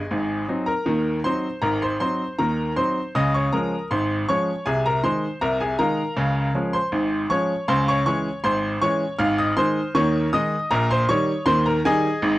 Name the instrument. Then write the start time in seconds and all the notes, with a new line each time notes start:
grand piano
Already playing: G#4 D#5 G#5
0.11 G#1 G#2
0.49 F#3 C4 D#4
0.66 A#4 A#5
0.86 D#2 D#3
1.24 F#3 C4 D#4 C5 C6
1.62 G#1 G#2 A#4 A#5
1.82 C5 C6
2.00 F#3 C4 D#4 C5 C6
2.39 D#2 D#3 A#4 A#5
2.76 F#3 C4 D#4 C5 C6
3.15 C#2 C#3 D#5 D#6
3.34 C#5 C#6
3.53 F3 G#3 C#4 A#4 A#5
3.91 G#1 G#2 C5 C6
4.29 F3 G#3 C#4 C#5 C#6
4.66 C2 C3 G#4 G#5
4.86 A#4 A#5
5.04 D#3 G#3 D#4 C5 C6
5.41 C2 C3 A#4 A#5
5.61 G#4 G#5
5.79 D#3 G#3 D#4 A#4 F5 A#5
6.17 C#2 C#3
6.54 F3 G#3 C#4
6.73 C5 C6
6.92 G#1 G#2
7.30 F3 G#3 C#4 C#5 C#6
7.68 C#2 C#3 C5 C6
7.88 C#5 C#6
8.06 E3 G#3 C#4 C#5 C#6
8.44 G#1 G#2 C5 C6
8.82 E3 G#3 C#4 C#5 C#6
9.19 G#1 G#2 F5 F6
9.38 D#5 D#6
9.57 D#3 G#3 D#4 C5 C6
9.95 D#2 D#3 C#5 C#6
10.33 D#3 G#3 D#4 D#5 D#6
10.71 A#1 A#2 A#4 A#5
10.91 C5 C6
11.09 D#3 G3 D#4 C#5 C#6
11.46 D#2 D#3 C5 C6
11.66 A#4 A#5
11.85 D#3 G3 D#4 G#4 D#5 G#5
12.22 G#1 G#2